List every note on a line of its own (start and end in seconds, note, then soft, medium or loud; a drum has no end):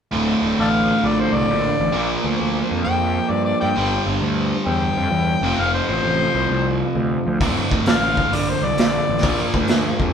0.11 0.34 D1 medium
0.11 1.92 D2 medium
0.11 1.93 A2 medium
0.11 1.94 D3 medium
0.42 0.53 D1 medium
0.59 0.90 A1 medium
0.59 0.69 A4 medium
0.59 0.69 D5 medium
0.59 1.08 F5 medium
1.04 1.25 A#1 medium
1.04 1.22 D5 medium
1.20 1.36 C5 medium
1.33 1.44 C2 medium
1.33 2.22 D5 medium
1.48 1.70 A#1 medium
1.80 1.90 A1 medium
1.92 2.15 A#1 medium
1.92 3.74 A#2 medium
1.92 3.75 F3 medium
1.92 3.76 A#3 medium
2.24 2.35 D2 medium
2.41 2.62 D2 medium
2.71 2.81 F2 medium
2.85 3.18 F2 medium
2.85 3.33 G5 medium
3.30 3.51 G2 medium
3.30 3.44 D5 medium
3.45 3.60 D5 medium
3.60 3.72 G2 medium
3.60 3.69 D5 medium
3.60 4.05 G5 medium
3.76 3.98 G1 medium
3.76 5.42 G2 medium
3.76 5.42 D3 medium
3.76 5.43 G3 medium
4.07 4.17 G1 medium
4.21 4.53 D2 medium
4.66 4.88 E2 medium
4.66 5.62 G5 loud
4.97 5.08 F2 medium
5.12 5.33 E2 medium
5.41 5.52 F1 medium
5.41 7.24 F2 medium
5.41 7.25 C3 medium
5.41 7.42 F3 medium
5.58 5.80 F1 medium
5.58 5.73 F5 medium
5.74 5.88 C5 medium
5.88 5.99 A1 medium
5.88 6.77 C5 loud
6.04 6.25 A1 medium
6.35 6.45 C2 medium
6.49 6.81 C2 medium
6.95 7.17 D2 medium
7.27 7.37 D2 medium
7.40 7.62 D1 medium
7.40 9.23 D2 medium
7.40 9.23 A2 medium
7.40 9.24 D3 medium
7.40 kick medium
7.40 open hi-hat soft
7.71 7.82 D1 medium
7.71 kick medium
7.86 8.18 A1 medium
7.86 7.96 A4 medium
7.86 7.97 D5 medium
7.86 8.37 F5 medium
7.86 snare loud
7.86 open hi-hat soft
8.17 kick medium
8.32 8.54 A#1 medium
8.32 8.51 D5 medium
8.32 open hi-hat soft
8.50 8.66 C5 medium
8.62 8.73 C2 medium
8.62 9.52 D5 medium
8.77 8.99 A#1 medium
8.77 snare loud
8.77 open hi-hat soft
9.09 9.23 A1 medium
9.18 snare soft
9.22 9.45 A#1 medium
9.22 10.13 A#2 medium
9.22 10.13 F3 medium
9.22 10.13 A#3 medium
9.22 kick loud
9.22 open hi-hat soft
9.54 9.65 D2 medium
9.54 kick medium
9.68 9.91 D2 medium
9.68 snare loud
9.68 open hi-hat soft
10.00 10.10 F2 medium
10.00 kick medium